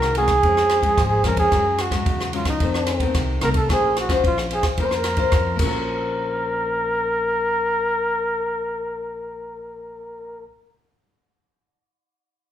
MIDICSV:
0, 0, Header, 1, 5, 480
1, 0, Start_track
1, 0, Key_signature, -5, "minor"
1, 0, Tempo, 542495
1, 1345, Time_signature, 4, 2, 24, 8
1, 11076, End_track
2, 0, Start_track
2, 0, Title_t, "Flugelhorn"
2, 0, Program_c, 0, 56
2, 0, Note_on_c, 0, 70, 105
2, 117, Note_off_c, 0, 70, 0
2, 157, Note_on_c, 0, 68, 114
2, 1076, Note_off_c, 0, 68, 0
2, 1119, Note_on_c, 0, 70, 98
2, 1224, Note_off_c, 0, 70, 0
2, 1233, Note_on_c, 0, 68, 102
2, 1606, Note_on_c, 0, 66, 88
2, 1619, Note_off_c, 0, 68, 0
2, 2074, Note_off_c, 0, 66, 0
2, 2079, Note_on_c, 0, 65, 84
2, 2185, Note_off_c, 0, 65, 0
2, 2201, Note_on_c, 0, 63, 82
2, 2761, Note_off_c, 0, 63, 0
2, 3038, Note_on_c, 0, 70, 104
2, 3090, Note_off_c, 0, 70, 0
2, 3150, Note_on_c, 0, 69, 94
2, 3262, Note_off_c, 0, 69, 0
2, 3287, Note_on_c, 0, 68, 102
2, 3502, Note_off_c, 0, 68, 0
2, 3535, Note_on_c, 0, 66, 83
2, 3747, Note_off_c, 0, 66, 0
2, 3773, Note_on_c, 0, 65, 91
2, 3876, Note_off_c, 0, 65, 0
2, 4015, Note_on_c, 0, 68, 90
2, 4117, Note_off_c, 0, 68, 0
2, 4261, Note_on_c, 0, 70, 86
2, 4298, Note_on_c, 0, 72, 71
2, 4312, Note_off_c, 0, 70, 0
2, 4385, Note_on_c, 0, 70, 93
2, 4398, Note_off_c, 0, 72, 0
2, 4952, Note_off_c, 0, 70, 0
2, 4957, Note_on_c, 0, 70, 100
2, 9241, Note_off_c, 0, 70, 0
2, 11076, End_track
3, 0, Start_track
3, 0, Title_t, "Nylon-string guitar"
3, 0, Program_c, 1, 24
3, 0, Note_on_c, 1, 51, 59
3, 0, Note_on_c, 1, 56, 60
3, 0, Note_on_c, 1, 60, 65
3, 0, Note_on_c, 1, 66, 69
3, 98, Note_off_c, 1, 56, 0
3, 102, Note_off_c, 1, 60, 0
3, 103, Note_off_c, 1, 66, 0
3, 147, Note_on_c, 1, 56, 57
3, 150, Note_on_c, 1, 66, 61
3, 151, Note_on_c, 1, 60, 55
3, 286, Note_off_c, 1, 56, 0
3, 286, Note_off_c, 1, 66, 0
3, 288, Note_off_c, 1, 60, 0
3, 357, Note_off_c, 1, 51, 0
3, 382, Note_on_c, 1, 41, 54
3, 383, Note_on_c, 1, 53, 53
3, 385, Note_on_c, 1, 56, 59
3, 388, Note_on_c, 1, 61, 55
3, 704, Note_off_c, 1, 53, 0
3, 706, Note_off_c, 1, 61, 0
3, 707, Note_off_c, 1, 56, 0
3, 725, Note_on_c, 1, 53, 60
3, 729, Note_on_c, 1, 56, 53
3, 734, Note_on_c, 1, 61, 59
3, 840, Note_off_c, 1, 41, 0
3, 863, Note_on_c, 1, 41, 55
3, 1056, Note_off_c, 1, 53, 0
3, 1059, Note_off_c, 1, 56, 0
3, 1061, Note_off_c, 1, 61, 0
3, 1103, Note_on_c, 1, 53, 57
3, 1109, Note_on_c, 1, 56, 54
3, 1115, Note_on_c, 1, 61, 58
3, 1306, Note_off_c, 1, 53, 0
3, 1309, Note_off_c, 1, 56, 0
3, 1312, Note_off_c, 1, 61, 0
3, 1321, Note_off_c, 1, 41, 0
3, 1347, Note_on_c, 1, 42, 59
3, 1350, Note_on_c, 1, 54, 60
3, 1351, Note_on_c, 1, 56, 54
3, 1356, Note_on_c, 1, 61, 59
3, 1669, Note_off_c, 1, 54, 0
3, 1669, Note_off_c, 1, 56, 0
3, 1673, Note_off_c, 1, 61, 0
3, 1696, Note_on_c, 1, 54, 55
3, 1702, Note_on_c, 1, 61, 63
3, 1703, Note_on_c, 1, 56, 59
3, 1804, Note_off_c, 1, 42, 0
3, 1829, Note_on_c, 1, 49, 53
3, 2024, Note_off_c, 1, 54, 0
3, 2025, Note_off_c, 1, 56, 0
3, 2026, Note_off_c, 1, 61, 0
3, 2061, Note_on_c, 1, 54, 61
3, 2064, Note_on_c, 1, 56, 63
3, 2069, Note_on_c, 1, 61, 56
3, 2266, Note_off_c, 1, 54, 0
3, 2266, Note_off_c, 1, 56, 0
3, 2270, Note_off_c, 1, 61, 0
3, 2284, Note_off_c, 1, 49, 0
3, 2310, Note_on_c, 1, 41, 54
3, 2310, Note_on_c, 1, 51, 50
3, 2311, Note_on_c, 1, 57, 53
3, 2316, Note_on_c, 1, 60, 63
3, 2630, Note_off_c, 1, 51, 0
3, 2632, Note_off_c, 1, 57, 0
3, 2633, Note_off_c, 1, 60, 0
3, 2661, Note_on_c, 1, 51, 62
3, 2666, Note_on_c, 1, 57, 54
3, 2671, Note_on_c, 1, 60, 66
3, 2766, Note_off_c, 1, 41, 0
3, 2790, Note_on_c, 1, 48, 55
3, 2987, Note_off_c, 1, 51, 0
3, 2990, Note_off_c, 1, 57, 0
3, 2992, Note_off_c, 1, 60, 0
3, 3025, Note_on_c, 1, 51, 57
3, 3028, Note_on_c, 1, 57, 52
3, 3031, Note_on_c, 1, 60, 64
3, 3168, Note_off_c, 1, 51, 0
3, 3170, Note_off_c, 1, 60, 0
3, 3171, Note_off_c, 1, 57, 0
3, 3246, Note_off_c, 1, 48, 0
3, 3273, Note_on_c, 1, 58, 58
3, 3273, Note_on_c, 1, 61, 55
3, 3279, Note_on_c, 1, 65, 57
3, 3281, Note_on_c, 1, 72, 63
3, 3593, Note_off_c, 1, 61, 0
3, 3597, Note_off_c, 1, 65, 0
3, 3597, Note_off_c, 1, 72, 0
3, 3625, Note_on_c, 1, 61, 63
3, 3630, Note_on_c, 1, 65, 66
3, 3633, Note_on_c, 1, 72, 67
3, 3728, Note_off_c, 1, 58, 0
3, 3753, Note_on_c, 1, 53, 56
3, 3951, Note_off_c, 1, 61, 0
3, 3952, Note_off_c, 1, 65, 0
3, 3952, Note_off_c, 1, 72, 0
3, 3994, Note_on_c, 1, 61, 55
3, 3997, Note_on_c, 1, 65, 49
3, 4004, Note_on_c, 1, 72, 64
3, 4134, Note_off_c, 1, 61, 0
3, 4134, Note_off_c, 1, 65, 0
3, 4139, Note_off_c, 1, 72, 0
3, 4208, Note_off_c, 1, 53, 0
3, 4238, Note_on_c, 1, 58, 53
3, 4240, Note_on_c, 1, 61, 54
3, 4244, Note_on_c, 1, 65, 56
3, 4244, Note_on_c, 1, 72, 60
3, 4557, Note_off_c, 1, 61, 0
3, 4559, Note_off_c, 1, 72, 0
3, 4560, Note_off_c, 1, 65, 0
3, 4582, Note_on_c, 1, 61, 62
3, 4588, Note_on_c, 1, 65, 62
3, 4588, Note_on_c, 1, 72, 67
3, 4691, Note_off_c, 1, 58, 0
3, 4715, Note_on_c, 1, 53, 57
3, 4909, Note_off_c, 1, 61, 0
3, 4911, Note_off_c, 1, 65, 0
3, 4912, Note_off_c, 1, 72, 0
3, 4919, Note_on_c, 1, 58, 64
3, 4954, Note_off_c, 1, 53, 0
3, 4972, Note_on_c, 1, 61, 65
3, 5010, Note_on_c, 1, 65, 68
3, 5050, Note_on_c, 1, 72, 71
3, 9239, Note_off_c, 1, 58, 0
3, 9292, Note_off_c, 1, 61, 0
3, 9330, Note_off_c, 1, 65, 0
3, 9370, Note_off_c, 1, 72, 0
3, 11076, End_track
4, 0, Start_track
4, 0, Title_t, "Upright bass"
4, 0, Program_c, 2, 32
4, 0, Note_on_c, 2, 36, 84
4, 309, Note_off_c, 2, 36, 0
4, 381, Note_on_c, 2, 41, 82
4, 790, Note_off_c, 2, 41, 0
4, 863, Note_on_c, 2, 32, 87
4, 1068, Note_off_c, 2, 32, 0
4, 1092, Note_on_c, 2, 41, 94
4, 1301, Note_off_c, 2, 41, 0
4, 1340, Note_on_c, 2, 42, 92
4, 1751, Note_off_c, 2, 42, 0
4, 1824, Note_on_c, 2, 40, 81
4, 2234, Note_off_c, 2, 40, 0
4, 2304, Note_on_c, 2, 41, 90
4, 2715, Note_off_c, 2, 41, 0
4, 2786, Note_on_c, 2, 36, 80
4, 2992, Note_off_c, 2, 36, 0
4, 3020, Note_on_c, 2, 36, 89
4, 3228, Note_off_c, 2, 36, 0
4, 3267, Note_on_c, 2, 34, 96
4, 3677, Note_off_c, 2, 34, 0
4, 3751, Note_on_c, 2, 34, 83
4, 4160, Note_off_c, 2, 34, 0
4, 4229, Note_on_c, 2, 41, 84
4, 4638, Note_off_c, 2, 41, 0
4, 4706, Note_on_c, 2, 41, 81
4, 4913, Note_off_c, 2, 41, 0
4, 4950, Note_on_c, 2, 34, 93
4, 9235, Note_off_c, 2, 34, 0
4, 11076, End_track
5, 0, Start_track
5, 0, Title_t, "Drums"
5, 18, Note_on_c, 9, 37, 68
5, 107, Note_off_c, 9, 37, 0
5, 131, Note_on_c, 9, 51, 50
5, 220, Note_off_c, 9, 51, 0
5, 244, Note_on_c, 9, 37, 64
5, 244, Note_on_c, 9, 51, 44
5, 249, Note_on_c, 9, 36, 68
5, 333, Note_off_c, 9, 37, 0
5, 333, Note_off_c, 9, 51, 0
5, 337, Note_off_c, 9, 36, 0
5, 382, Note_on_c, 9, 36, 71
5, 382, Note_on_c, 9, 51, 47
5, 470, Note_off_c, 9, 36, 0
5, 470, Note_off_c, 9, 51, 0
5, 506, Note_on_c, 9, 37, 69
5, 595, Note_off_c, 9, 37, 0
5, 615, Note_on_c, 9, 37, 70
5, 615, Note_on_c, 9, 51, 45
5, 703, Note_off_c, 9, 37, 0
5, 703, Note_off_c, 9, 51, 0
5, 731, Note_on_c, 9, 36, 67
5, 736, Note_on_c, 9, 51, 47
5, 820, Note_off_c, 9, 36, 0
5, 824, Note_off_c, 9, 51, 0
5, 863, Note_on_c, 9, 36, 85
5, 864, Note_on_c, 9, 37, 63
5, 864, Note_on_c, 9, 51, 45
5, 952, Note_off_c, 9, 36, 0
5, 953, Note_off_c, 9, 37, 0
5, 953, Note_off_c, 9, 51, 0
5, 1096, Note_on_c, 9, 37, 69
5, 1096, Note_on_c, 9, 51, 50
5, 1184, Note_off_c, 9, 37, 0
5, 1184, Note_off_c, 9, 51, 0
5, 1211, Note_on_c, 9, 36, 74
5, 1212, Note_on_c, 9, 51, 52
5, 1300, Note_off_c, 9, 36, 0
5, 1301, Note_off_c, 9, 51, 0
5, 1343, Note_on_c, 9, 36, 62
5, 1343, Note_on_c, 9, 37, 60
5, 1343, Note_on_c, 9, 51, 42
5, 1432, Note_off_c, 9, 36, 0
5, 1432, Note_off_c, 9, 37, 0
5, 1432, Note_off_c, 9, 51, 0
5, 1578, Note_on_c, 9, 37, 65
5, 1578, Note_on_c, 9, 51, 51
5, 1667, Note_off_c, 9, 37, 0
5, 1667, Note_off_c, 9, 51, 0
5, 1692, Note_on_c, 9, 36, 59
5, 1696, Note_on_c, 9, 37, 68
5, 1696, Note_on_c, 9, 51, 47
5, 1780, Note_off_c, 9, 36, 0
5, 1784, Note_off_c, 9, 37, 0
5, 1784, Note_off_c, 9, 51, 0
5, 1823, Note_on_c, 9, 36, 81
5, 1823, Note_on_c, 9, 51, 46
5, 1912, Note_off_c, 9, 36, 0
5, 1912, Note_off_c, 9, 51, 0
5, 1951, Note_on_c, 9, 37, 68
5, 2039, Note_off_c, 9, 37, 0
5, 2061, Note_on_c, 9, 51, 51
5, 2150, Note_off_c, 9, 51, 0
5, 2170, Note_on_c, 9, 37, 68
5, 2170, Note_on_c, 9, 51, 48
5, 2172, Note_on_c, 9, 36, 70
5, 2258, Note_off_c, 9, 37, 0
5, 2258, Note_off_c, 9, 51, 0
5, 2260, Note_off_c, 9, 36, 0
5, 2301, Note_on_c, 9, 51, 48
5, 2304, Note_on_c, 9, 36, 69
5, 2390, Note_off_c, 9, 51, 0
5, 2393, Note_off_c, 9, 36, 0
5, 2427, Note_on_c, 9, 37, 64
5, 2516, Note_off_c, 9, 37, 0
5, 2535, Note_on_c, 9, 37, 72
5, 2535, Note_on_c, 9, 51, 54
5, 2624, Note_off_c, 9, 37, 0
5, 2624, Note_off_c, 9, 51, 0
5, 2654, Note_on_c, 9, 36, 68
5, 2656, Note_on_c, 9, 51, 51
5, 2742, Note_off_c, 9, 36, 0
5, 2744, Note_off_c, 9, 51, 0
5, 2782, Note_on_c, 9, 37, 64
5, 2782, Note_on_c, 9, 51, 51
5, 2784, Note_on_c, 9, 36, 83
5, 2871, Note_off_c, 9, 37, 0
5, 2871, Note_off_c, 9, 51, 0
5, 2873, Note_off_c, 9, 36, 0
5, 3020, Note_on_c, 9, 37, 69
5, 3020, Note_on_c, 9, 51, 52
5, 3108, Note_off_c, 9, 37, 0
5, 3108, Note_off_c, 9, 51, 0
5, 3132, Note_on_c, 9, 51, 54
5, 3134, Note_on_c, 9, 36, 71
5, 3221, Note_off_c, 9, 51, 0
5, 3223, Note_off_c, 9, 36, 0
5, 3268, Note_on_c, 9, 36, 66
5, 3271, Note_on_c, 9, 37, 64
5, 3271, Note_on_c, 9, 51, 49
5, 3356, Note_off_c, 9, 36, 0
5, 3360, Note_off_c, 9, 37, 0
5, 3360, Note_off_c, 9, 51, 0
5, 3509, Note_on_c, 9, 37, 65
5, 3509, Note_on_c, 9, 51, 51
5, 3597, Note_off_c, 9, 37, 0
5, 3597, Note_off_c, 9, 51, 0
5, 3619, Note_on_c, 9, 36, 65
5, 3623, Note_on_c, 9, 37, 66
5, 3623, Note_on_c, 9, 51, 49
5, 3708, Note_off_c, 9, 36, 0
5, 3711, Note_off_c, 9, 37, 0
5, 3711, Note_off_c, 9, 51, 0
5, 3751, Note_on_c, 9, 36, 78
5, 3755, Note_on_c, 9, 51, 44
5, 3839, Note_off_c, 9, 36, 0
5, 3843, Note_off_c, 9, 51, 0
5, 3874, Note_on_c, 9, 37, 68
5, 3963, Note_off_c, 9, 37, 0
5, 3987, Note_on_c, 9, 51, 48
5, 4075, Note_off_c, 9, 51, 0
5, 4097, Note_on_c, 9, 37, 67
5, 4097, Note_on_c, 9, 51, 49
5, 4098, Note_on_c, 9, 36, 69
5, 4185, Note_off_c, 9, 37, 0
5, 4185, Note_off_c, 9, 51, 0
5, 4186, Note_off_c, 9, 36, 0
5, 4225, Note_on_c, 9, 51, 48
5, 4227, Note_on_c, 9, 36, 63
5, 4313, Note_off_c, 9, 51, 0
5, 4316, Note_off_c, 9, 36, 0
5, 4346, Note_on_c, 9, 37, 66
5, 4434, Note_off_c, 9, 37, 0
5, 4457, Note_on_c, 9, 37, 70
5, 4457, Note_on_c, 9, 51, 49
5, 4546, Note_off_c, 9, 37, 0
5, 4546, Note_off_c, 9, 51, 0
5, 4571, Note_on_c, 9, 51, 46
5, 4576, Note_on_c, 9, 36, 66
5, 4659, Note_off_c, 9, 51, 0
5, 4664, Note_off_c, 9, 36, 0
5, 4704, Note_on_c, 9, 37, 67
5, 4704, Note_on_c, 9, 51, 42
5, 4709, Note_on_c, 9, 36, 85
5, 4793, Note_off_c, 9, 37, 0
5, 4793, Note_off_c, 9, 51, 0
5, 4797, Note_off_c, 9, 36, 0
5, 4946, Note_on_c, 9, 49, 74
5, 4949, Note_on_c, 9, 36, 83
5, 5034, Note_off_c, 9, 49, 0
5, 5037, Note_off_c, 9, 36, 0
5, 11076, End_track
0, 0, End_of_file